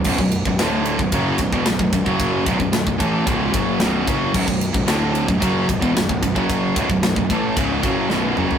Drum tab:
CC |x---------------|----------------|x---------------|----------------|
RD |--x-x-x-x-x-x-x-|x-x-x-x-x-x-x-x-|--x-x-x-x-x-x-x-|x-x-x-x-x-x-----|
SD |----o-------o---|----o-------o---|----o-------o---|----o-------o---|
T2 |----------------|----------------|----------------|--------------o-|
FT |----------------|----------------|----------------|---------------o|
BD |oo-o---oo-oo-ooo|o-oo-oo-o-o---o-|oo-o---oo-oo-ooo|o-oo-oo-o-o-----|